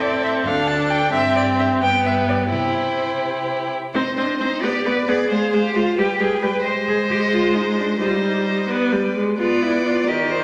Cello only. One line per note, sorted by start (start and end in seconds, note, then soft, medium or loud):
0.00 0.47 A2 soft
0.46 1.13 D2 medium
1.13 1.78 G2 medium
1.81 2.53 G2 medium
2.52 3.74 C3 soft
3.94 4.02 D#4 medium
4.17 4.39 D4 medium
4.39 4.64 D#4 medium
4.63 4.87 G4 medium
4.86 5.10 B4 medium
5.08 5.65 G#4 medium
5.65 5.77 G4 medium
5.76 6.00 F4 medium
5.99 6.22 G4 medium
6.21 6.44 G#4 medium
6.43 6.65 B4 medium
6.65 6.73 C5 medium
6.88 6.96 G#4 medium
7.10 7.18 G4 medium
7.32 7.57 F4 medium
7.55 7.77 D#4 medium
7.77 7.85 D4 soft
8.00 8.08 D#4 soft
8.07 8.16 F4 soft
8.14 8.69 D#4 soft
9.39 9.64 F4 medium
9.63 9.84 E4 medium
9.85 10.09 F4 medium
10.08 10.30 G4 medium
10.31 10.39 C5 medium